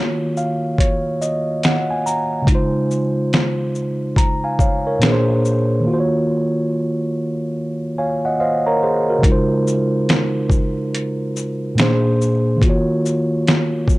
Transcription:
Already playing: tine electric piano D#3 A#3 F4 F#4 C#5
0.37 tine electric piano F5, shaker
0.78 tine electric piano C#5, kick, closed hi-hat
1.22 tine electric piano D#5, shaker
1.63 tine electric piano F#5, snare, closed hi-hat
1.91 tine electric piano G#5
2.06 tine electric piano A#5, shaker
2.42 tine electric piano C#3 G#3
2.47 tine electric piano D#4, kick, closed hi-hat
2.52 tine electric piano F4 C5
2.91 shaker
3.33 snare, closed hi-hat
3.75 shaker
4.16 tine electric piano A#5, kick, closed hi-hat
4.44 tine electric piano F5 G#5
4.59 tine electric piano C#5 F5, kick, shaker
4.87 tine electric piano A#4 C#5
4.99 tine electric piano A#2 A#3 D4, closed hi-hat
5.03 tine electric piano G#4 B4, snare
5.12 tine electric piano C5
5.45 shaker
5.80 tine electric piano D#3 A#3
5.87 tine electric piano F4 F#4
5.93 tine electric piano C5
6.00 tine electric piano C#5
7.98 tine electric piano C#5 F5 G#5
8.25 tine electric piano D#5 F#5
8.40 tine electric piano C5 D#5 F5
8.67 tine electric piano A#4 C#5 A#5
8.83 tine electric piano G#4 C5
9.09 tine electric piano F#4 A#4
9.19 tine electric piano C#3 G#3
9.23 tine electric piano D#4, kick, closed hi-hat
9.28 tine electric piano F4 C5
9.67 shaker
10.09 snare, closed hi-hat
10.50 kick, shaker
10.95 closed hi-hat
11.36 shaker
11.75 tine electric piano A#2 A#3 D4, closed hi-hat
11.80 tine electric piano G#4 C5, snare
12.21 shaker
12.57 tine electric piano D#3 A#3
12.62 tine electric piano F4, kick, closed hi-hat
12.66 tine electric piano F#4 C#5
13.06 shaker
13.47 snare, closed hi-hat
13.88 kick, shaker

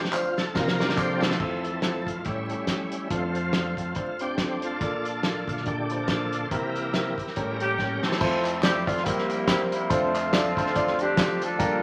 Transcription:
Already playing: grand piano D2 D3, tonewheel organ G4
0.05 snare
0.12 grand piano C4 D4 F4 C5, tonewheel organ F4, clap, tambourine
0.37 tonewheel organ A4, snare, tambourine
0.54 grand piano C2 C3 C4 D4 F4 A#4, tonewheel organ C3 F3 A#3 A#4, kick, snare, tambourine
0.68 snare
0.79 tonewheel organ A#3 D4 G4, grand piano C4 D4 F4 A#4, snare, tambourine
0.89 snare
0.97 grand piano C4 D4 F4 A4, tonewheel organ C5, kick, clap, tambourine
1.21 tonewheel organ C4 E4 A4, snare, tambourine
1.31 snare
1.39 grand piano F1 F2 C4 E4 F4 A4, tonewheel organ F2 E3 A3, kick, crash
1.64 closed hi-hat
1.82 grand piano C4 E4 F4 A4, snare, closed hi-hat
2.06 tonewheel organ F4, kick, closed hi-hat
2.19 tonewheel organ F4
2.24 grand piano A1 A2 C#4 E4 G4 A4, tonewheel organ A2 G3 C#4 E4, kick, closed hi-hat
2.49 grand piano C#4 E4 G4 A4, closed hi-hat
2.67 tonewheel organ G3 C#4 E4, grand piano C#4 E4 G4 A4, kick, snare, closed hi-hat
2.92 closed hi-hat
3.10 grand piano F1 F2 C4 D4 F4 A4, tonewheel organ F2 F3 A3 C4 F4, kick, closed hi-hat
3.35 closed hi-hat
3.53 grand piano C4 D4 F4 A4, snare, closed hi-hat
3.77 tonewheel organ F2 F3 C4, kick, closed hi-hat
3.95 grand piano C4 D4 F4 C5, kick, closed hi-hat
4.19 grand piano C4 D4 F4 C5, tonewheel organ C4 D4 G4, closed hi-hat
4.38 grand piano C4 D4 F4 A4, kick, snare, closed hi-hat
4.62 tonewheel organ D4 F4 A4, closed hi-hat
4.81 grand piano A#1 A#2 A#3 D4 F4 A4, kick, closed hi-hat
5.05 closed hi-hat
5.23 grand piano A#3 D4 F4 A4, snare, closed hi-hat
5.47 tonewheel organ A#2 D3 A3 F4, kick, closed hi-hat
5.57 snare
5.66 grand piano A#3 D4 F4 A#4, tonewheel organ D4 G4, kick, closed hi-hat
5.90 grand piano A#3 D4 F4 C5, closed hi-hat
6.03 tonewheel organ A#4
6.08 grand piano A#3 D4 F4 C5, tonewheel organ D4 F4 A4, kick, snare, closed hi-hat
6.33 closed hi-hat
6.45 tonewheel organ C5
6.51 grand piano C2 C3 C4 E4 G4 A#4, tonewheel organ C3 E3 A#3 E4 G4 A#4, kick, closed hi-hat
6.76 closed hi-hat
6.93 grand piano C4 E4 G4 A#4, snare, closed hi-hat
7.18 kick, closed hi-hat
7.27 snare
7.36 grand piano A1 A2 C#4 G4 A4 A#4, tonewheel organ A2 G3 C#4, kick, closed hi-hat
7.60 horn section A#3 C#4 G4, grand piano C#4 G4 A4 A#4, tonewheel organ C#4 G4 A#4, closed hi-hat
7.78 grand piano C#4 G4 A4 C#5, kick, snare
8.03 horn section C4 E4 A4, tonewheel organ E4 A4 C5, snare
8.12 snare
8.21 grand piano F1 F2 C4 E4 F4 A4 C5, tonewheel organ F3 A3 C4, kick, crash, tambourine
8.45 clap, closed hi-hat, tambourine
8.62 grand piano C4 E4 F4 A4 D5, horn section G4, snare, clap, closed hi-hat, tambourine
8.87 grand piano C4 E4 F4 A4 D5, horn section F4, kick, closed hi-hat, tambourine
8.97 snare
9.04 grand piano C2 C3 C4 E4 G4 A#4 C5, horn section G3 A#3 E4, tonewheel organ A#3 C4 G4, kick, closed hi-hat, tambourine
9.18 snare
9.30 closed hi-hat, tambourine
9.47 grand piano C4 E4 G4 A#4 C5, horn section E4, kick, snare, clap, closed hi-hat, tambourine
9.72 horn section E4, closed hi-hat, tambourine
9.90 grand piano F1 F2 C4 D4 F4 A4 C5, tonewheel organ F2 D3 A3 C4 F4, horn section A3 C4 F4, kick, closed hi-hat, tambourine
10.15 clap, closed hi-hat, tambourine
10.33 grand piano C4 D4 F4 A4 D5, snare, clap, closed hi-hat, tambourine
10.57 grand piano C4 D4 F4 A4 C5, kick, closed hi-hat, tambourine
10.67 snare
10.75 grand piano C4 D4 F4 A4 D5, kick, closed hi-hat, tambourine
10.87 snare
10.99 horn section C4 D4 G4, closed hi-hat, tambourine
11.17 grand piano C4 D4 F4 A4 C5, kick, snare, clap, closed hi-hat, tambourine
11.42 horn section D4 F4 A4, closed hi-hat, tambourine
11.59 grand piano G1 G2 A#3 D4 F4 G4 A#4, tonewheel organ F3 A#3 D4 G4, kick, closed hi-hat, tambourine

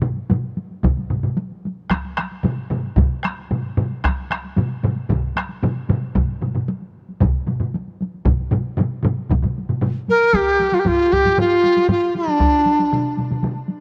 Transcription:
0.02 taiko low-mid, taiko mid, taiko high
0.17 taiko high
0.30 taiko low-mid, taiko mid, taiko high
0.43 taiko high
0.57 taiko high
0.70 taiko high
0.83 taiko, taiko low-mid, taiko mid, taiko high
0.97 taiko high
1.10 taiko low-mid, taiko mid, taiko high
1.23 taiko low-mid, taiko mid, taiko high
1.37 taiko high
1.51 taiko high
1.65 taiko high
1.90 taiko rim, taiko, taiko high
2.05 taiko high
2.17 taiko rim, taiko high
2.32 taiko high
2.43 taiko low-mid, taiko mid, taiko high
2.58 taiko high
2.70 taiko low-mid, taiko mid, taiko high
2.85 taiko high
2.96 taiko, taiko low-mid, taiko mid, taiko high
3.24 taiko rim, taiko high
3.39 taiko high
3.51 taiko low-mid, taiko mid, taiko high
3.65 taiko high
3.77 taiko low-mid, taiko mid, taiko high
3.90 taiko high
4.04 taiko rim, taiko, taiko high
4.17 taiko high
4.30 taiko rim, taiko high
4.44 taiko high
4.56 taiko low-mid, taiko mid, taiko high
4.70 taiko high
4.83 taiko low-mid, taiko mid, taiko high
4.96 taiko high
5.09 taiko, taiko low-mid, taiko mid, taiko high
5.36 taiko rim, taiko high
5.49 taiko high
5.62 taiko low-mid, taiko mid, taiko high
5.76 taiko high
5.89 taiko low-mid, taiko mid, taiko high
6.03 taiko high
6.15 taiko, taiko low-mid, taiko mid, taiko high
6.29 taiko high
6.42 taiko low-mid, taiko mid, taiko high
6.55 taiko low-mid, taiko mid, taiko high
6.69 taiko high
6.82 taiko high
7.09 taiko high
7.21 taiko, taiko low-mid, taiko mid, taiko high
7.47 taiko low-mid, taiko mid, taiko high
7.60 taiko low-mid, taiko mid, taiko high
7.74 taiko high
7.88 taiko high
8.01 taiko high
8.14 taiko high
8.25 taiko, taiko low-mid, taiko mid, taiko high
8.40 taiko high
8.51 taiko low-mid, taiko mid, taiko high
8.67 taiko high
8.77 taiko low-mid, taiko mid, taiko high
8.93 taiko high
9.02 taiko low-mid, taiko mid, taiko high
9.18 taiko high
9.29 taiko, taiko low-mid, taiko mid, taiko high
9.42 taiko low-mid, taiko mid, taiko high
9.58 taiko high
9.69 taiko low-mid, taiko mid, taiko high
9.81 taiko low-mid, taiko mid, taiko high
9.96 taiko high
10.08 dizi A#4, taiko high
10.22 taiko high
10.34 dizi G4, taiko, taiko high
10.60 taiko high
10.73 dizi F4, taiko high
10.80 dizi G4
10.85 dizi F4, taiko, taiko low-mid, taiko high
11.12 dizi G4, taiko, taiko low-mid, taiko high
11.25 taiko low-mid, taiko high
11.38 dizi F4, taiko low-mid, taiko high
11.64 taiko high
11.77 taiko high
11.89 dizi F4, taiko low-mid, taiko high
12.15 dizi D4, taiko high
12.28 taiko high
12.40 taiko, taiko high
12.66 taiko high
12.79 taiko high
12.93 taiko mid, taiko high
13.17 taiko mid, taiko high
13.31 taiko mid, taiko high
13.43 taiko mid, taiko high
13.68 taiko high

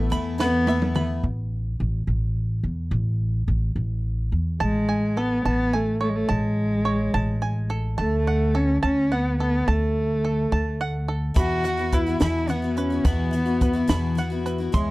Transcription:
Already playing: twelve-string acoustic guitar A3 B3 E4, five-string banjo B4 E5
0.10 upright bass E2, twelve-string acoustic guitar E3 A3 B3 E4, five-string banjo B5, closed hi-hat
0.38 twelve-string acoustic guitar A2 E3 A3 B3 E4, cello B3, five-string banjo B4, snare
0.67 twelve-string acoustic guitar E3 A3 B3 E4, five-string banjo E5, high tom
0.82 mid tom
0.95 twelve-string acoustic guitar A3 B3 E4, five-string banjo B5, mid tom
1.23 upright bass A1
1.80 upright bass A1
2.07 upright bass A1
2.63 upright bass E2
2.91 upright bass A1
3.48 upright bass A1
3.76 upright bass A1
4.32 upright bass E2
4.60 upright bass A1, cello G#3, five-string banjo A5
4.89 five-string banjo G#5
5.17 cello B3, five-string banjo A4
5.45 upright bass A1, cello B3, five-string banjo A5
5.73 cello A3, five-string banjo G#5
6.01 cello A3, five-string banjo C#5
6.09 cello G#3
6.16 cello A3
6.29 upright bass A1, cello G#3, five-string banjo A5
6.85 five-string banjo C#5
7.14 upright bass A1, five-string banjo A5
7.42 five-string banjo G#5
7.70 five-string banjo A4
7.98 upright bass D2, cello A3, five-string banjo A5
8.27 five-string banjo F#5
8.55 cello C#4, five-string banjo A4
8.83 upright bass D2, cello C#4, five-string banjo A5
9.12 cello B3, five-string banjo F#5
9.40 cello B3, five-string banjo A4
9.68 upright bass D2, cello A3, five-string banjo A5
10.25 five-string banjo A4
10.52 upright bass D2, five-string banjo A5
10.81 five-string banjo F#5
11.08 five-string banjo A4
11.34 twelve-string acoustic guitar E2 B2 E3 B3 E4 F#4, upright bass E2, cello F#4, five-string banjo B5, kick, closed hi-hat
11.64 twelve-string acoustic guitar E3 B3 E4 F#4, five-string banjo F#5, closed hi-hat
11.77 twelve-string acoustic guitar E3 B3 E4 F#4
11.92 cello E4, five-string banjo B4, kick, closed hi-hat
12.07 twelve-string acoustic guitar E3 B3 E4 F#4
12.20 twelve-string acoustic guitar E2 B2 E3 B3 E4 F#4, upright bass E2, cello E4, five-string banjo B5, snare, closed hi-hat
12.48 twelve-string acoustic guitar E3 B3 E4 F#4, cello B3, five-string banjo F#5, closed hi-hat
12.62 twelve-string acoustic guitar E3 B3 E4 F#4
12.76 cello C#4, five-string banjo B4, closed hi-hat
12.90 twelve-string acoustic guitar E3 B3 E4 F#4
13.05 twelve-string acoustic guitar E2 B2 E3 B3 E4 F#4, upright bass E2, cello B3, five-string banjo B5, kick, closed hi-hat
13.31 twelve-string acoustic guitar E3 B3 E4 F#4, closed hi-hat
13.46 twelve-string acoustic guitar E3 B3 E4 F#4
13.61 five-string banjo B4, kick, closed hi-hat
13.73 twelve-string acoustic guitar E3 B3 E4 F#4
13.88 twelve-string acoustic guitar E2 B2 E3 B3 E4 F#4, upright bass E2, five-string banjo B5, snare, closed hi-hat
14.15 twelve-string acoustic guitar E3 B3 E4 F#4, five-string banjo F#5, closed hi-hat
14.30 twelve-string acoustic guitar E3 B3 E4 F#4
14.46 five-string banjo B4, closed hi-hat
14.58 twelve-string acoustic guitar E3 B3 E4 F#4
14.72 upright bass E2, twelve-string acoustic guitar E3 G#3 C#4 E4, cello G#3, five-string banjo C6, kick, closed hi-hat

